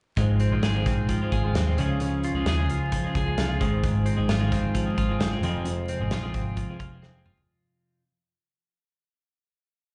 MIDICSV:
0, 0, Header, 1, 5, 480
1, 0, Start_track
1, 0, Key_signature, -4, "major"
1, 0, Tempo, 456274
1, 182, Time_signature, 4, 2, 24, 8
1, 10459, End_track
2, 0, Start_track
2, 0, Title_t, "Clean electric guitar"
2, 0, Program_c, 0, 27
2, 186, Note_on_c, 0, 44, 64
2, 423, Note_on_c, 0, 60, 55
2, 663, Note_on_c, 0, 68, 61
2, 892, Note_off_c, 0, 60, 0
2, 905, Note_on_c, 0, 60, 55
2, 1144, Note_on_c, 0, 53, 59
2, 1386, Note_off_c, 0, 68, 0
2, 1390, Note_on_c, 0, 68, 56
2, 1622, Note_off_c, 0, 60, 0
2, 1634, Note_on_c, 0, 60, 53
2, 1878, Note_on_c, 0, 49, 76
2, 1918, Note_off_c, 0, 44, 0
2, 1920, Note_off_c, 0, 60, 0
2, 2107, Note_off_c, 0, 49, 0
2, 2119, Note_on_c, 0, 49, 61
2, 2362, Note_on_c, 0, 65, 56
2, 2599, Note_off_c, 0, 68, 0
2, 2603, Note_on_c, 0, 68, 69
2, 2843, Note_off_c, 0, 65, 0
2, 2847, Note_on_c, 0, 65, 53
2, 3079, Note_off_c, 0, 53, 0
2, 3084, Note_on_c, 0, 53, 60
2, 3328, Note_off_c, 0, 68, 0
2, 3332, Note_on_c, 0, 68, 58
2, 3560, Note_off_c, 0, 65, 0
2, 3564, Note_on_c, 0, 65, 53
2, 3797, Note_on_c, 0, 44, 78
2, 3847, Note_off_c, 0, 49, 0
2, 4026, Note_off_c, 0, 44, 0
2, 4039, Note_on_c, 0, 44, 64
2, 4265, Note_off_c, 0, 65, 0
2, 4269, Note_on_c, 0, 60, 52
2, 4514, Note_off_c, 0, 68, 0
2, 4518, Note_on_c, 0, 65, 66
2, 4757, Note_off_c, 0, 60, 0
2, 4761, Note_on_c, 0, 60, 54
2, 4989, Note_off_c, 0, 53, 0
2, 4993, Note_on_c, 0, 53, 68
2, 5233, Note_off_c, 0, 65, 0
2, 5237, Note_on_c, 0, 65, 63
2, 5465, Note_off_c, 0, 60, 0
2, 5469, Note_on_c, 0, 60, 49
2, 5709, Note_off_c, 0, 44, 0
2, 5713, Note_on_c, 0, 41, 82
2, 5940, Note_off_c, 0, 41, 0
2, 5944, Note_on_c, 0, 41, 62
2, 6194, Note_off_c, 0, 60, 0
2, 6198, Note_on_c, 0, 60, 52
2, 6433, Note_off_c, 0, 65, 0
2, 6437, Note_on_c, 0, 65, 68
2, 6673, Note_off_c, 0, 60, 0
2, 6677, Note_on_c, 0, 60, 49
2, 6905, Note_off_c, 0, 53, 0
2, 6909, Note_on_c, 0, 53, 58
2, 7142, Note_off_c, 0, 65, 0
2, 7146, Note_on_c, 0, 65, 51
2, 7385, Note_off_c, 0, 60, 0
2, 7390, Note_on_c, 0, 60, 48
2, 7628, Note_off_c, 0, 65, 0
2, 7633, Note_on_c, 0, 65, 62
2, 8447, Note_off_c, 0, 41, 0
2, 8447, Note_off_c, 0, 53, 0
2, 8447, Note_off_c, 0, 60, 0
2, 8447, Note_off_c, 0, 65, 0
2, 10459, End_track
3, 0, Start_track
3, 0, Title_t, "Clean electric guitar"
3, 0, Program_c, 1, 27
3, 182, Note_on_c, 1, 53, 62
3, 186, Note_on_c, 1, 56, 67
3, 195, Note_on_c, 1, 60, 62
3, 202, Note_on_c, 1, 65, 68
3, 531, Note_off_c, 1, 65, 0
3, 537, Note_off_c, 1, 56, 0
3, 538, Note_off_c, 1, 60, 0
3, 543, Note_off_c, 1, 53, 0
3, 544, Note_on_c, 1, 65, 68
3, 549, Note_on_c, 1, 56, 56
3, 551, Note_on_c, 1, 60, 64
3, 554, Note_on_c, 1, 53, 57
3, 558, Note_on_c, 1, 44, 55
3, 558, Note_on_c, 1, 51, 50
3, 774, Note_off_c, 1, 65, 0
3, 777, Note_off_c, 1, 60, 0
3, 780, Note_off_c, 1, 56, 0
3, 781, Note_off_c, 1, 53, 0
3, 785, Note_off_c, 1, 51, 0
3, 787, Note_on_c, 1, 65, 60
3, 789, Note_off_c, 1, 44, 0
3, 789, Note_on_c, 1, 60, 59
3, 793, Note_on_c, 1, 56, 62
3, 794, Note_on_c, 1, 53, 57
3, 798, Note_on_c, 1, 51, 52
3, 802, Note_on_c, 1, 44, 51
3, 1268, Note_off_c, 1, 60, 0
3, 1272, Note_off_c, 1, 51, 0
3, 1274, Note_off_c, 1, 44, 0
3, 1274, Note_off_c, 1, 65, 0
3, 1278, Note_on_c, 1, 65, 57
3, 1284, Note_on_c, 1, 60, 45
3, 1288, Note_off_c, 1, 56, 0
3, 1292, Note_on_c, 1, 56, 44
3, 1296, Note_off_c, 1, 53, 0
3, 1300, Note_on_c, 1, 53, 41
3, 1506, Note_off_c, 1, 65, 0
3, 1516, Note_off_c, 1, 60, 0
3, 1519, Note_on_c, 1, 65, 58
3, 1520, Note_off_c, 1, 56, 0
3, 1524, Note_off_c, 1, 53, 0
3, 1528, Note_on_c, 1, 60, 48
3, 1532, Note_on_c, 1, 56, 47
3, 1538, Note_on_c, 1, 53, 43
3, 1744, Note_off_c, 1, 65, 0
3, 1754, Note_off_c, 1, 60, 0
3, 1757, Note_on_c, 1, 65, 47
3, 1760, Note_off_c, 1, 56, 0
3, 1763, Note_off_c, 1, 53, 0
3, 1767, Note_on_c, 1, 60, 49
3, 1775, Note_on_c, 1, 53, 48
3, 1778, Note_on_c, 1, 56, 41
3, 1872, Note_off_c, 1, 53, 0
3, 1872, Note_off_c, 1, 65, 0
3, 1877, Note_off_c, 1, 60, 0
3, 1880, Note_off_c, 1, 56, 0
3, 1884, Note_on_c, 1, 49, 70
3, 1885, Note_on_c, 1, 53, 91
3, 1893, Note_on_c, 1, 56, 75
3, 1896, Note_on_c, 1, 65, 88
3, 1896, Note_on_c, 1, 68, 90
3, 2469, Note_off_c, 1, 68, 0
3, 2471, Note_off_c, 1, 65, 0
3, 2473, Note_off_c, 1, 56, 0
3, 2474, Note_on_c, 1, 68, 68
3, 2475, Note_on_c, 1, 65, 66
3, 2477, Note_off_c, 1, 53, 0
3, 2477, Note_on_c, 1, 56, 60
3, 2478, Note_off_c, 1, 49, 0
3, 2481, Note_on_c, 1, 53, 58
3, 2489, Note_on_c, 1, 49, 59
3, 2696, Note_off_c, 1, 68, 0
3, 2705, Note_off_c, 1, 65, 0
3, 2708, Note_off_c, 1, 49, 0
3, 2708, Note_off_c, 1, 56, 0
3, 2708, Note_on_c, 1, 68, 71
3, 2712, Note_off_c, 1, 53, 0
3, 2717, Note_on_c, 1, 65, 61
3, 2721, Note_on_c, 1, 49, 59
3, 2721, Note_on_c, 1, 56, 59
3, 2725, Note_on_c, 1, 53, 63
3, 3190, Note_off_c, 1, 68, 0
3, 3195, Note_on_c, 1, 68, 55
3, 3197, Note_off_c, 1, 49, 0
3, 3202, Note_off_c, 1, 65, 0
3, 3207, Note_on_c, 1, 65, 51
3, 3210, Note_off_c, 1, 56, 0
3, 3214, Note_on_c, 1, 56, 49
3, 3414, Note_off_c, 1, 68, 0
3, 3426, Note_off_c, 1, 65, 0
3, 3426, Note_on_c, 1, 68, 54
3, 3434, Note_off_c, 1, 56, 0
3, 3438, Note_on_c, 1, 65, 47
3, 3446, Note_on_c, 1, 56, 44
3, 3650, Note_off_c, 1, 68, 0
3, 3654, Note_off_c, 1, 65, 0
3, 3662, Note_on_c, 1, 68, 52
3, 3665, Note_off_c, 1, 56, 0
3, 3667, Note_on_c, 1, 65, 56
3, 3678, Note_on_c, 1, 56, 38
3, 3783, Note_off_c, 1, 56, 0
3, 3788, Note_off_c, 1, 53, 0
3, 3788, Note_off_c, 1, 68, 0
3, 3789, Note_on_c, 1, 44, 78
3, 3791, Note_off_c, 1, 65, 0
3, 3792, Note_on_c, 1, 53, 78
3, 3796, Note_on_c, 1, 51, 84
3, 3796, Note_on_c, 1, 56, 77
3, 3800, Note_on_c, 1, 60, 89
3, 3801, Note_on_c, 1, 68, 90
3, 4379, Note_off_c, 1, 68, 0
3, 4381, Note_off_c, 1, 44, 0
3, 4383, Note_off_c, 1, 51, 0
3, 4383, Note_off_c, 1, 60, 0
3, 4383, Note_on_c, 1, 68, 70
3, 4385, Note_off_c, 1, 53, 0
3, 4385, Note_off_c, 1, 56, 0
3, 4387, Note_on_c, 1, 60, 63
3, 4389, Note_on_c, 1, 53, 61
3, 4389, Note_on_c, 1, 56, 63
3, 4394, Note_on_c, 1, 44, 52
3, 4396, Note_on_c, 1, 51, 55
3, 4610, Note_off_c, 1, 60, 0
3, 4610, Note_off_c, 1, 68, 0
3, 4614, Note_off_c, 1, 56, 0
3, 4619, Note_off_c, 1, 53, 0
3, 4620, Note_off_c, 1, 51, 0
3, 4623, Note_on_c, 1, 60, 67
3, 4623, Note_on_c, 1, 68, 64
3, 4627, Note_on_c, 1, 56, 63
3, 4632, Note_on_c, 1, 53, 64
3, 4633, Note_on_c, 1, 51, 55
3, 4635, Note_off_c, 1, 44, 0
3, 5106, Note_off_c, 1, 68, 0
3, 5110, Note_off_c, 1, 60, 0
3, 5110, Note_on_c, 1, 68, 47
3, 5114, Note_on_c, 1, 60, 46
3, 5115, Note_off_c, 1, 51, 0
3, 5115, Note_off_c, 1, 56, 0
3, 5119, Note_on_c, 1, 56, 41
3, 5120, Note_off_c, 1, 53, 0
3, 5124, Note_on_c, 1, 53, 48
3, 5338, Note_off_c, 1, 68, 0
3, 5347, Note_off_c, 1, 60, 0
3, 5351, Note_on_c, 1, 68, 54
3, 5355, Note_off_c, 1, 56, 0
3, 5359, Note_on_c, 1, 60, 57
3, 5361, Note_off_c, 1, 53, 0
3, 5368, Note_on_c, 1, 56, 46
3, 5373, Note_on_c, 1, 53, 47
3, 5582, Note_off_c, 1, 68, 0
3, 5591, Note_off_c, 1, 60, 0
3, 5594, Note_on_c, 1, 68, 53
3, 5595, Note_off_c, 1, 56, 0
3, 5596, Note_off_c, 1, 53, 0
3, 5603, Note_on_c, 1, 60, 49
3, 5608, Note_on_c, 1, 56, 48
3, 5609, Note_on_c, 1, 53, 41
3, 5708, Note_off_c, 1, 53, 0
3, 5713, Note_off_c, 1, 56, 0
3, 5713, Note_off_c, 1, 60, 0
3, 5716, Note_off_c, 1, 68, 0
3, 5717, Note_on_c, 1, 41, 80
3, 5719, Note_on_c, 1, 48, 87
3, 5720, Note_on_c, 1, 53, 76
3, 5726, Note_on_c, 1, 56, 81
3, 5726, Note_on_c, 1, 60, 95
3, 5732, Note_on_c, 1, 68, 102
3, 6315, Note_off_c, 1, 68, 0
3, 6317, Note_off_c, 1, 60, 0
3, 6320, Note_on_c, 1, 68, 68
3, 6321, Note_on_c, 1, 60, 62
3, 6322, Note_off_c, 1, 56, 0
3, 6323, Note_off_c, 1, 53, 0
3, 6326, Note_off_c, 1, 41, 0
3, 6326, Note_off_c, 1, 48, 0
3, 6326, Note_on_c, 1, 56, 62
3, 6327, Note_on_c, 1, 53, 67
3, 6330, Note_on_c, 1, 41, 55
3, 6330, Note_on_c, 1, 48, 53
3, 6543, Note_off_c, 1, 68, 0
3, 6545, Note_off_c, 1, 60, 0
3, 6546, Note_off_c, 1, 56, 0
3, 6556, Note_off_c, 1, 41, 0
3, 6556, Note_off_c, 1, 53, 0
3, 6556, Note_on_c, 1, 68, 72
3, 6557, Note_on_c, 1, 60, 63
3, 6558, Note_off_c, 1, 48, 0
3, 6559, Note_on_c, 1, 56, 70
3, 6568, Note_on_c, 1, 53, 64
3, 6569, Note_on_c, 1, 41, 65
3, 6571, Note_on_c, 1, 48, 62
3, 7046, Note_off_c, 1, 68, 0
3, 7047, Note_off_c, 1, 60, 0
3, 7050, Note_on_c, 1, 68, 60
3, 7051, Note_on_c, 1, 60, 49
3, 7053, Note_off_c, 1, 56, 0
3, 7058, Note_on_c, 1, 56, 39
3, 7062, Note_off_c, 1, 53, 0
3, 7067, Note_on_c, 1, 53, 44
3, 7272, Note_off_c, 1, 68, 0
3, 7278, Note_off_c, 1, 60, 0
3, 7284, Note_on_c, 1, 68, 56
3, 7286, Note_off_c, 1, 56, 0
3, 7290, Note_on_c, 1, 60, 46
3, 7291, Note_off_c, 1, 53, 0
3, 7302, Note_on_c, 1, 56, 46
3, 7303, Note_on_c, 1, 53, 50
3, 7510, Note_off_c, 1, 68, 0
3, 7522, Note_off_c, 1, 60, 0
3, 7522, Note_on_c, 1, 68, 50
3, 7526, Note_off_c, 1, 56, 0
3, 7529, Note_off_c, 1, 53, 0
3, 7533, Note_on_c, 1, 60, 47
3, 7538, Note_on_c, 1, 56, 47
3, 7543, Note_on_c, 1, 53, 41
3, 7877, Note_off_c, 1, 68, 0
3, 7883, Note_off_c, 1, 60, 0
3, 7885, Note_off_c, 1, 56, 0
3, 7887, Note_off_c, 1, 53, 0
3, 8413, Note_off_c, 1, 41, 0
3, 8413, Note_off_c, 1, 48, 0
3, 10459, End_track
4, 0, Start_track
4, 0, Title_t, "Picked electric bass"
4, 0, Program_c, 2, 34
4, 179, Note_on_c, 2, 32, 86
4, 487, Note_off_c, 2, 32, 0
4, 540, Note_on_c, 2, 34, 74
4, 644, Note_off_c, 2, 34, 0
4, 661, Note_on_c, 2, 32, 74
4, 867, Note_off_c, 2, 32, 0
4, 904, Note_on_c, 2, 34, 68
4, 1211, Note_off_c, 2, 34, 0
4, 1387, Note_on_c, 2, 32, 97
4, 1591, Note_off_c, 2, 32, 0
4, 1619, Note_on_c, 2, 39, 82
4, 1827, Note_off_c, 2, 39, 0
4, 1861, Note_on_c, 2, 37, 80
4, 2376, Note_off_c, 2, 37, 0
4, 2453, Note_on_c, 2, 37, 69
4, 2562, Note_off_c, 2, 37, 0
4, 2581, Note_on_c, 2, 39, 79
4, 2823, Note_off_c, 2, 39, 0
4, 2823, Note_on_c, 2, 37, 68
4, 3133, Note_off_c, 2, 37, 0
4, 3312, Note_on_c, 2, 37, 97
4, 3517, Note_off_c, 2, 37, 0
4, 3544, Note_on_c, 2, 36, 90
4, 3752, Note_off_c, 2, 36, 0
4, 3796, Note_on_c, 2, 32, 89
4, 4306, Note_off_c, 2, 32, 0
4, 4391, Note_on_c, 2, 31, 76
4, 4495, Note_off_c, 2, 31, 0
4, 4517, Note_on_c, 2, 32, 85
4, 4721, Note_off_c, 2, 32, 0
4, 4759, Note_on_c, 2, 31, 65
4, 5064, Note_off_c, 2, 31, 0
4, 5231, Note_on_c, 2, 32, 107
4, 5438, Note_off_c, 2, 32, 0
4, 5461, Note_on_c, 2, 31, 97
4, 5672, Note_off_c, 2, 31, 0
4, 5703, Note_on_c, 2, 29, 90
4, 6219, Note_off_c, 2, 29, 0
4, 6313, Note_on_c, 2, 32, 73
4, 6417, Note_off_c, 2, 32, 0
4, 6431, Note_on_c, 2, 34, 85
4, 6637, Note_off_c, 2, 34, 0
4, 6669, Note_on_c, 2, 32, 77
4, 6977, Note_off_c, 2, 32, 0
4, 7149, Note_on_c, 2, 29, 88
4, 7355, Note_off_c, 2, 29, 0
4, 7399, Note_on_c, 2, 29, 90
4, 7601, Note_off_c, 2, 29, 0
4, 7637, Note_on_c, 2, 31, 69
4, 7839, Note_off_c, 2, 31, 0
4, 10459, End_track
5, 0, Start_track
5, 0, Title_t, "Drums"
5, 179, Note_on_c, 9, 36, 106
5, 180, Note_on_c, 9, 42, 70
5, 284, Note_off_c, 9, 36, 0
5, 286, Note_off_c, 9, 42, 0
5, 418, Note_on_c, 9, 42, 55
5, 523, Note_off_c, 9, 42, 0
5, 661, Note_on_c, 9, 42, 86
5, 663, Note_on_c, 9, 38, 98
5, 767, Note_off_c, 9, 42, 0
5, 769, Note_off_c, 9, 38, 0
5, 906, Note_on_c, 9, 36, 80
5, 906, Note_on_c, 9, 42, 69
5, 908, Note_on_c, 9, 38, 36
5, 1011, Note_off_c, 9, 36, 0
5, 1011, Note_off_c, 9, 42, 0
5, 1013, Note_off_c, 9, 38, 0
5, 1144, Note_on_c, 9, 42, 86
5, 1147, Note_on_c, 9, 36, 73
5, 1249, Note_off_c, 9, 42, 0
5, 1252, Note_off_c, 9, 36, 0
5, 1389, Note_on_c, 9, 36, 83
5, 1391, Note_on_c, 9, 42, 57
5, 1494, Note_off_c, 9, 36, 0
5, 1496, Note_off_c, 9, 42, 0
5, 1632, Note_on_c, 9, 42, 86
5, 1634, Note_on_c, 9, 38, 112
5, 1737, Note_off_c, 9, 42, 0
5, 1740, Note_off_c, 9, 38, 0
5, 1872, Note_on_c, 9, 42, 73
5, 1977, Note_off_c, 9, 42, 0
5, 2106, Note_on_c, 9, 42, 70
5, 2211, Note_off_c, 9, 42, 0
5, 2352, Note_on_c, 9, 42, 55
5, 2457, Note_off_c, 9, 42, 0
5, 2589, Note_on_c, 9, 42, 89
5, 2592, Note_on_c, 9, 38, 105
5, 2695, Note_off_c, 9, 42, 0
5, 2697, Note_off_c, 9, 38, 0
5, 2836, Note_on_c, 9, 42, 68
5, 2941, Note_off_c, 9, 42, 0
5, 3072, Note_on_c, 9, 42, 90
5, 3074, Note_on_c, 9, 36, 68
5, 3177, Note_off_c, 9, 42, 0
5, 3180, Note_off_c, 9, 36, 0
5, 3315, Note_on_c, 9, 36, 86
5, 3318, Note_on_c, 9, 42, 53
5, 3420, Note_off_c, 9, 36, 0
5, 3423, Note_off_c, 9, 42, 0
5, 3552, Note_on_c, 9, 42, 85
5, 3555, Note_on_c, 9, 38, 103
5, 3658, Note_off_c, 9, 42, 0
5, 3660, Note_off_c, 9, 38, 0
5, 3796, Note_on_c, 9, 36, 75
5, 3797, Note_on_c, 9, 42, 73
5, 3901, Note_off_c, 9, 36, 0
5, 3902, Note_off_c, 9, 42, 0
5, 4035, Note_on_c, 9, 42, 72
5, 4036, Note_on_c, 9, 36, 106
5, 4140, Note_off_c, 9, 42, 0
5, 4141, Note_off_c, 9, 36, 0
5, 4271, Note_on_c, 9, 42, 65
5, 4377, Note_off_c, 9, 42, 0
5, 4513, Note_on_c, 9, 42, 92
5, 4515, Note_on_c, 9, 38, 109
5, 4618, Note_off_c, 9, 42, 0
5, 4620, Note_off_c, 9, 38, 0
5, 4756, Note_on_c, 9, 36, 78
5, 4756, Note_on_c, 9, 42, 79
5, 4758, Note_on_c, 9, 38, 33
5, 4861, Note_off_c, 9, 36, 0
5, 4861, Note_off_c, 9, 42, 0
5, 4863, Note_off_c, 9, 38, 0
5, 4994, Note_on_c, 9, 42, 89
5, 4996, Note_on_c, 9, 36, 74
5, 5099, Note_off_c, 9, 42, 0
5, 5101, Note_off_c, 9, 36, 0
5, 5236, Note_on_c, 9, 36, 77
5, 5237, Note_on_c, 9, 42, 54
5, 5341, Note_off_c, 9, 36, 0
5, 5342, Note_off_c, 9, 42, 0
5, 5474, Note_on_c, 9, 42, 93
5, 5477, Note_on_c, 9, 38, 110
5, 5580, Note_off_c, 9, 42, 0
5, 5582, Note_off_c, 9, 38, 0
5, 5714, Note_on_c, 9, 42, 70
5, 5819, Note_off_c, 9, 42, 0
5, 5949, Note_on_c, 9, 42, 78
5, 6054, Note_off_c, 9, 42, 0
5, 6190, Note_on_c, 9, 42, 63
5, 6295, Note_off_c, 9, 42, 0
5, 6428, Note_on_c, 9, 42, 91
5, 6430, Note_on_c, 9, 38, 104
5, 6533, Note_off_c, 9, 42, 0
5, 6535, Note_off_c, 9, 38, 0
5, 6671, Note_on_c, 9, 42, 79
5, 6673, Note_on_c, 9, 36, 77
5, 6776, Note_off_c, 9, 42, 0
5, 6778, Note_off_c, 9, 36, 0
5, 6910, Note_on_c, 9, 42, 85
5, 6913, Note_on_c, 9, 36, 81
5, 7015, Note_off_c, 9, 42, 0
5, 7018, Note_off_c, 9, 36, 0
5, 7152, Note_on_c, 9, 36, 84
5, 7154, Note_on_c, 9, 42, 53
5, 7258, Note_off_c, 9, 36, 0
5, 7259, Note_off_c, 9, 42, 0
5, 7395, Note_on_c, 9, 38, 47
5, 7500, Note_off_c, 9, 38, 0
5, 7635, Note_on_c, 9, 45, 72
5, 7740, Note_off_c, 9, 45, 0
5, 7758, Note_on_c, 9, 43, 65
5, 7864, Note_off_c, 9, 43, 0
5, 10459, End_track
0, 0, End_of_file